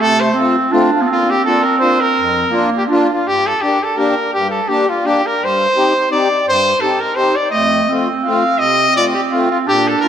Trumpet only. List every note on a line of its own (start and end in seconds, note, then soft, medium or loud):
0.01 0.22 A4 loud
0.20 0.37 C5 medium
0.95 1.09 F4 medium
1.12 1.32 F4 medium
1.30 1.45 G4 medium
1.45 1.64 A4 medium
1.63 1.78 A#4 medium
1.79 2.02 C5 medium
2.01 2.72 A#4 medium
2.77 2.83 G4 medium
2.93 3.09 F4 medium
3.14 3.29 F4 medium
3.27 3.49 G4 medium
3.47 3.63 A4 medium
3.61 3.85 G4 medium
3.84 3.99 A4 medium
3.97 4.33 A#4 medium
4.33 4.50 G4 medium
4.50 4.70 A4 medium
4.68 4.91 G4 medium
4.89 5.08 F4 medium
5.06 5.28 G4 medium
5.26 5.46 A#4 medium
5.44 6.11 C5 loud
6.12 6.44 D5 medium
6.48 6.83 C5 loud
6.81 7.02 A4 medium
7.00 7.17 A#4 medium
7.15 7.37 C5 medium
7.36 7.50 D5 medium
7.51 7.94 D#5 medium
8.24 8.60 F5 medium
8.59 8.95 D#5 loud
8.96 9.05 D5 loud
9.14 9.21 G4 medium
9.31 9.49 F4 medium
9.51 9.58 F4 medium
9.68 9.89 G4 loud
9.88 10.00 A4 medium
10.01 10.08 A#4 medium